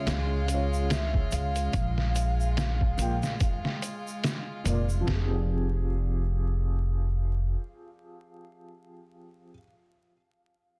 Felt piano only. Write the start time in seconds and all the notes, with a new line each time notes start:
Already playing: C#3 G#3 F4 C#5
0.45 C#3 G#3
0.51 F4 C#5
2.97 A#2 A#3 F4
3.01 G5
4.64 A#2 A#3 F4
4.69 D5
5.01 F3
5.05 C4
5.09 G4
5.14 G#4